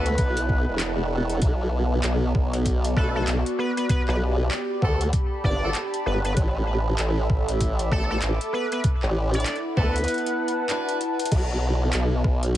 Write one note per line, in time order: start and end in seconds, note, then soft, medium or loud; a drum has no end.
0.00 0.16 D2 loud
0.00 2.42 E4 medium
0.00 0.75 B4 loud
0.00 2.43 B4 medium
0.00 2.42 F#5 medium
0.06 2.42 A5 medium
0.06 closed hi-hat soft
0.18 0.65 B1 medium
0.18 kick loud
0.18 closed hi-hat medium
0.37 closed hi-hat medium
0.49 kick medium
0.68 1.40 E1 loud
0.80 clap loud
0.80 closed hi-hat medium
1.30 closed hi-hat soft
1.42 2.02 B1 loud
1.42 4.90 B3 medium
1.42 kick loud
1.42 closed hi-hat medium
1.86 7.37 D5 medium
2.04 2.33 B1 medium
2.04 clap loud
2.04 closed hi-hat medium
2.21 3.90 F#4 medium
2.35 2.95 B1 loud
2.35 kick loud
2.35 cross-stick soft
2.53 closed hi-hat soft
2.66 kick medium
2.66 closed hi-hat medium
2.85 closed hi-hat medium
2.97 3.26 B1 loud
2.97 3.25 C#4 medium
2.97 3.25 D4 medium
2.97 3.09 A4 medium
2.97 3.25 A4 medium
2.97 3.25 B4 medium
2.97 kick loud
3.15 3.23 A4 medium
3.27 3.43 B1 loud
3.27 clap loud
3.27 closed hi-hat medium
3.46 closed hi-hat soft
3.59 3.71 B4 medium
3.59 cross-stick soft
3.77 3.85 B4 medium
3.77 closed hi-hat soft
3.89 7.37 G4 medium
3.89 4.01 B4 medium
3.89 kick loud
3.89 closed hi-hat medium
4.08 4.49 B1 loud
4.08 4.16 B4 medium
4.08 clap soft
4.48 9.67 B5 medium
4.48 clap loud
4.82 5.11 D2 loud
4.82 5.02 B3 medium
4.82 5.02 F#4 medium
4.82 5.02 G4 medium
4.82 5.02 A4 medium
4.82 kick loud
5.01 7.37 A5 medium
5.01 closed hi-hat medium
5.13 kick loud
5.13 closed hi-hat medium
5.44 5.73 G1 loud
5.44 5.69 D5 medium
5.44 kick medium
5.63 5.77 B3 medium
5.63 5.77 F#4 medium
5.63 5.77 G4 medium
5.63 5.77 A4 medium
5.75 clap loud
5.75 closed hi-hat medium
5.94 closed hi-hat soft
6.06 6.35 G1 medium
6.06 6.18 B4 medium
6.25 6.32 B4 medium
6.25 closed hi-hat soft
6.37 6.97 A1 loud
6.37 9.85 A4 medium
6.37 kick loud
6.37 closed hi-hat medium
6.66 9.85 E5 loud
6.99 7.28 A1 loud
6.99 clap loud
6.99 closed hi-hat medium
7.22 9.85 D6 loud
7.30 7.90 A1 loud
7.30 kick loud
7.30 cross-stick soft
7.48 closed hi-hat soft
7.60 kick medium
7.60 closed hi-hat medium
7.79 closed hi-hat soft
7.91 8.20 A1 loud
7.91 8.20 B3 medium
7.91 8.20 D4 medium
7.91 8.20 G4 medium
7.91 8.20 A4 medium
7.91 8.04 A4 loud
7.91 kick loud
8.10 8.18 A4 medium
8.22 8.38 A1 loud
8.22 clap loud
8.22 closed hi-hat medium
8.41 closed hi-hat soft
8.53 8.65 B4 medium
8.53 cross-stick soft
8.72 8.80 B4 medium
8.72 closed hi-hat soft
8.84 12.32 E4 medium
8.84 kick loud
8.84 closed hi-hat medium
9.03 9.44 A1 loud
9.03 clap soft
9.28 12.32 F#5 medium
9.34 9.55 D5 medium
9.34 closed hi-hat soft
9.40 closed hi-hat soft
9.46 clap loud
9.46 closed hi-hat medium
9.52 12.32 B4 medium
9.52 closed hi-hat soft
9.77 10.06 D2 loud
9.77 9.97 D4 medium
9.77 9.97 E4 medium
9.77 9.97 F#4 medium
9.77 9.97 A4 medium
9.77 10.65 B4 loud
9.77 kick loud
9.96 closed hi-hat soft
9.98 12.32 A5 medium
9.98 closed hi-hat soft
10.04 closed hi-hat soft
10.08 closed hi-hat medium
10.14 closed hi-hat soft
10.18 closed hi-hat soft
10.27 closed hi-hat medium
10.48 closed hi-hat soft
10.70 10.98 D4 medium
10.70 10.98 E4 medium
10.70 10.98 F#4 medium
10.70 10.98 B4 medium
10.70 clap loud
10.70 closed hi-hat medium
10.89 closed hi-hat soft
11.01 closed hi-hat medium
11.19 closed hi-hat medium
11.25 closed hi-hat medium
11.31 11.92 B1 loud
11.31 12.57 B3 medium
11.31 kick loud
11.31 closed hi-hat medium
11.31 crash medium
11.87 12.57 F#4 medium
11.93 12.23 B1 loud
11.93 clap loud
11.93 closed hi-hat medium
12.24 12.57 B1 loud
12.24 kick loud
12.24 cross-stick soft
12.43 12.57 D5 medium
12.43 closed hi-hat medium